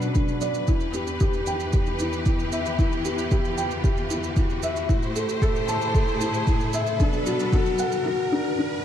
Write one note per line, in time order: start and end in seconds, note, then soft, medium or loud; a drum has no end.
0.00 0.66 B2 medium
0.00 0.66 F#3 medium
0.00 0.15 D4 medium
0.00 0.66 D4 medium
0.00 0.71 F#4 medium
0.00 4.85 B4 medium
0.00 0.71 F#5 medium
0.00 riser medium
0.00 shaker soft
0.15 0.31 D4 medium
0.15 kick medium
0.15 shaker soft
0.28 shaker soft
0.41 0.67 D5 medium
0.41 shaker medium
0.54 shaker soft
0.67 4.85 E2 medium
0.67 4.85 E3 medium
0.67 0.93 E4 medium
0.67 4.85 G4 medium
0.67 kick loud
0.67 shaker soft
0.81 shaker soft
0.94 1.19 G4 medium
0.94 shaker medium
1.07 shaker soft
1.20 1.46 G4 loud
1.20 kick medium
1.20 shaker soft
1.34 shaker soft
1.47 1.62 G5 medium
1.47 shaker medium
1.60 shaker soft
1.73 1.99 G4 medium
1.73 kick loud
1.73 shaker soft
1.86 shaker soft
1.99 2.25 E4 medium
1.99 shaker medium
2.13 shaker soft
2.26 2.41 E4 medium
2.26 kick loud
2.26 shaker soft
2.39 shaker soft
2.52 2.78 E5 medium
2.52 shaker medium
2.66 shaker soft
2.79 3.04 E4 medium
2.79 kick medium
2.79 shaker soft
2.92 shaker soft
3.05 3.30 G4 medium
3.05 shaker medium
3.19 shaker soft
3.31 3.57 G4 loud
3.31 kick medium
3.31 shaker soft
3.45 shaker soft
3.58 3.73 G5 medium
3.58 shaker medium
3.71 shaker soft
3.84 4.09 G4 medium
3.84 kick loud
3.84 shaker soft
3.97 shaker soft
4.10 4.35 E4 medium
4.10 shaker medium
4.24 shaker soft
4.37 4.52 E4 medium
4.37 kick medium
4.37 shaker soft
4.50 shaker soft
4.63 4.88 E5 medium
4.63 shaker medium
4.76 shaker soft
4.88 6.97 A2 medium
4.88 6.97 A3 medium
4.88 6.97 E4 medium
4.88 5.14 E4 medium
4.88 6.97 C5 medium
4.88 kick medium
4.88 shaker soft
5.03 shaker soft
5.16 5.41 A4 medium
5.16 shaker medium
5.29 shaker soft
5.42 5.67 A4 loud
5.42 kick medium
5.42 shaker soft
5.56 shaker soft
5.69 5.84 A5 medium
5.69 shaker medium
5.82 shaker soft
5.95 6.20 A4 medium
5.95 kick loud
5.95 shaker soft
6.08 shaker soft
6.21 6.46 E4 medium
6.21 shaker medium
6.34 shaker soft
6.47 6.63 E4 medium
6.47 kick loud
6.47 shaker soft
6.60 shaker soft
6.73 6.99 E5 medium
6.73 shaker medium
6.87 shaker soft
7.00 8.04 B2 medium
7.00 8.04 F#3 medium
7.00 8.04 D4 medium
7.00 7.25 D4 medium
7.00 8.04 B4 medium
7.00 kick loud
7.00 shaker soft
7.13 shaker soft
7.26 7.52 F#4 medium
7.26 shaker medium
7.40 shaker soft
7.53 7.78 F#4 loud
7.53 kick loud
7.53 shaker soft
7.66 shaker soft
7.79 7.94 F#5 medium
7.79 shaker medium
7.92 shaker soft
8.06 8.31 F#4 medium
8.32 8.57 D4 medium
8.59 8.73 D4 medium